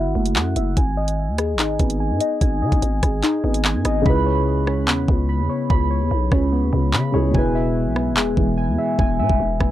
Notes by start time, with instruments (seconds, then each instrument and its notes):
Already playing: synth keys E4 F#4 E5 F#5
0.05 808-style bass G#1
0.15 808-style bass F#1, synth keys A3
0.26 closed hi-hat
0.36 808-style bass F#2, synth keys F#5, clap
0.56 808-style bass F#1, synth keys E5, closed hi-hat
0.77 808-style bass G#1, synth keys G#5, kick, closed hi-hat
0.97 synth keys D#5
1.08 closed hi-hat
1.28 808-style bass D#2
1.38 synth keys G#4, cross-stick, closed hi-hat
1.54 808-style bass G#1
1.59 synth keys D#4, clap, closed hi-hat
1.79 808-style bass G#1, synth keys B3, kick, closed hi-hat
1.90 closed hi-hat
2.00 synth keys G#5
2.10 808-style bass G#2
2.21 synth keys D#5, closed hi-hat
2.41 808-style bass G#1, synth keys G#5, kick, closed hi-hat
2.62 808-style bass D#3, synth keys D#5
2.72 808-style bass G#1, kick, closed hi-hat
2.82 808-style bass G#1, closed hi-hat
3.03 808-style bass G#1, synth keys G#4, kick, cross-stick, closed hi-hat
3.23 synth keys D#4, clap, closed hi-hat
3.44 808-style bass G#1, synth keys B3
3.54 closed hi-hat
3.65 synth keys G#5, clap
3.75 808-style bass G#2
3.85 808-style bass G#1, synth keys D#5, cross-stick, closed hi-hat
4.02 grand piano C#3 G#3
4.06 808-style bass C#2, grand piano E4 B4, synth keys B5, kick
4.26 synth keys C#5
4.67 synth keys C#4, cross-stick
4.88 808-style bass E2, synth keys B3, clap
5.08 808-style bass C#2, synth keys C#3, kick
5.29 synth keys B5
5.39 808-style bass E2
5.49 synth keys C#5
5.70 808-style bass C#2, synth keys B5, kick
5.91 synth keys C#5
6.01 808-style bass E2
6.11 808-style bass B1
6.32 808-style bass C#2, synth keys C#4, kick, cross-stick
6.52 synth keys B3
6.63 808-style bass D#2
6.72 808-style bass C#2, synth keys C#3
6.93 808-style bass C#3, synth keys B5, clap
7.12 808-style bass C#2, grand piano C#3 G#3 E4 G#4, synth keys C#5
7.30 grand piano B2 G#3
7.34 808-style bass E1, grand piano E4 B4, synth keys G#5, kick
7.55 synth keys E5
7.86 808-style bass B1
7.96 synth keys B3, cross-stick
8.11 808-style bass E1
8.17 synth keys G#3, clap
8.37 808-style bass E1, synth keys E3, kick
8.58 synth keys G#5
8.68 808-style bass E2
8.78 synth keys E5
8.99 808-style bass E1, synth keys G#5, kick
9.19 808-style bass B2, synth keys E5
9.30 808-style bass E1, kick
9.40 808-style bass E1
9.60 808-style bass E1, synth keys B3, kick, cross-stick